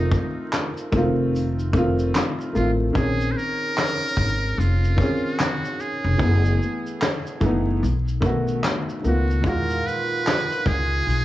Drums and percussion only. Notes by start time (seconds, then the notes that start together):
0.11 kick, shaker
0.53 snare, clap, closed hi-hat, shaker
0.77 shaker
0.92 kick, shaker
1.36 closed hi-hat, shaker
1.59 shaker
1.73 kick, shaker
1.99 shaker
2.15 snare, clap, closed hi-hat, shaker
2.41 shaker
2.56 shaker
2.95 kick, closed hi-hat, shaker
3.21 shaker
3.39 shaker
3.78 snare, clap, closed hi-hat, shaker
4.02 shaker
4.17 kick, shaker
4.60 closed hi-hat, shaker
4.84 shaker
4.98 kick, shaker
5.40 snare, clap, closed hi-hat, shaker
5.65 shaker
5.80 shaker
6.19 kick, closed hi-hat, shaker
6.45 shaker
6.63 shaker
6.87 shaker
7.02 snare, clap, closed hi-hat, shaker
7.27 shaker
7.41 kick, shaker
7.84 closed hi-hat, shaker
8.08 shaker
8.22 kick, shaker
8.48 shaker
8.64 snare, clap, closed hi-hat, shaker
8.89 shaker
9.05 shaker
9.31 shaker
9.44 kick, closed hi-hat, shaker
9.70 shaker
9.88 shaker
10.27 snare, clap, closed hi-hat, shaker
10.52 shaker
10.66 kick, shaker
11.10 closed hi-hat, shaker